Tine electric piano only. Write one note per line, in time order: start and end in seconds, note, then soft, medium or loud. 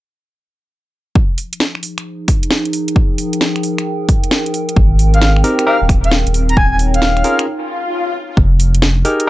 5.44 5.65 C4 medium
5.44 5.65 D#4 medium
5.44 5.65 G4 medium
5.44 5.65 A#4 medium
5.67 5.76 C4 medium
5.67 5.76 D#4 medium
5.67 5.76 G4 medium
5.67 5.76 A#4 loud
7.24 7.45 C#4 medium
7.24 7.45 F4 medium
7.24 7.45 G#4 medium
7.24 7.45 A#4 loud
9.05 9.26 D#4 medium
9.05 9.26 G4 medium
9.05 9.26 G#4 medium
9.05 9.26 A#4 medium